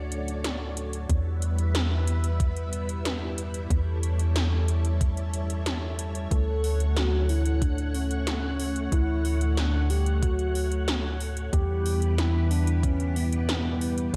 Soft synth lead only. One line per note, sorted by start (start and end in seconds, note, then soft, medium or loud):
6.31 6.98 A4 loud
6.96 7.31 F#4 loud
7.29 7.63 E4 loud
7.62 7.96 D4 loud
7.95 8.94 C#4 loud
8.92 9.57 E4 loud
9.58 9.91 D4 medium
9.90 10.22 G4 loud
10.23 11.16 F#4 medium
11.53 12.14 G4 loud
12.18 12.49 E4 loud
12.51 12.81 D4 loud
12.83 13.17 C#4 loud
13.16 14.13 B3 loud